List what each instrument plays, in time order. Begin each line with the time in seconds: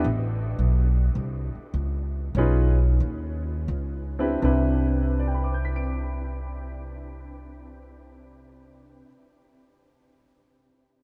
0.04 upright bass A1
0.59 upright bass B1
1.15 upright bass C2
1.55 muted upright bass stroke
1.74 upright bass C#2
2.35 upright bass B1, grand piano C#4 D#4 F4 G#4 B4
3.00 upright bass D#2
3.68 upright bass C#2
4.19 grand piano C4 D4 E4 G4 B4
4.42 upright bass C2, grand piano C3 C4 D4 E4 B4
5.19 grand piano D5
5.27 grand piano G5
5.34 grand piano B5
5.44 grand piano D6
5.54 grand piano G6
5.65 grand piano B6
5.76 grand piano D7